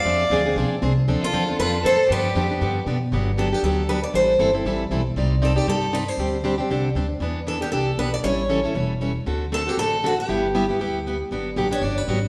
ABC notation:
X:1
M:4/4
L:1/8
Q:"Swing" 1/4=234
K:Gmix
V:1 name="Steel-string acoustic guitar"
f4- f z3 | z A3 B2 c2 | B6 z2 | [K:G] z2 A G A2 B d |
c3 z4 z | z2 A G A2 B c- | c3 z4 z | z2 A G A2 B d |
^c3 z4 z | z2 A G A2 F G- | G6 z2 | z3 ^c d B3 |]
V:2 name="Violin"
d4- d z3 | z F3 F2 A2 | G6 z2 | [K:G] z8 |
z8 | z8 | z8 | z8 |
z8 | z8 | z8 | z8 |]
V:3 name="Steel-string acoustic guitar"
[F,CD_A] z [F,CDA] [CDA] [F,CDA] z [F,CDA] z | [D,F,CDA] z [D,F,CDA] [CDA] [D,F,CDA] z [D,F,CDA] z | [D,F,B,DG] z [D,F,B,DG] [B,DG] [D,F,B,DG] z [D,F,B,DG] z | [K:G] [D,F,B,DG] z [D,F,B,DG] [B,DG] [D,F,B,DG] z [D,F,B,DG] z |
[E,G,CEA] z [E,G,CEA] [CEA] [E,G,CEA] z [E,G,CEA] z | [C,G,C_EGd] z [C,G,CEGd] [CEGd] [C,G,CEGd] z [C,G,CEGd] z | [D,G,CDG] z [D,G,CDG] [CDG] [D,G,CDG] z [D,G,CDG] z | [E,B,DG] z [E,B,DG] [B,DG] [E,B,DG] z [E,B,DG] z |
[E,G,^CEA] z [E,G,CEA] [CEA] [E,G,CEA] z [E,G,CEA] z | [D,A,CFA] z [D,A,CFA] [CFA] [D,A,CFA] z [D,A,CFA] z | [G,B,EG] z [G,B,EG] [B,EG] [G,B,EG] z [G,B,EG] z | [D,F,B,DG] z [D,F,B,DG] [B,DG] [D,F,B,DG] z [D,F,B,DG] z |]
V:4 name="Upright bass" clef=bass
F,,2 D,,2 B,,, z C,,2 | D,, z E,,2 F,,2 A,,2 | G,,2 F,,2 G,,2 B,,2 | [K:G] G,,,4 D,,4 |
A,,,2 G,,,2 A,,,2 B,,,2 | C,,4 G,,4 | D,,4 C,,2 D,,2 | E,,4 C,,2 B,,,2 |
A,,,4 E,,,4 | D,,4 A,,,4 | G,,,4 D,,4 | G,,,2 A,,,2 G,,,2 _A,,,2 |]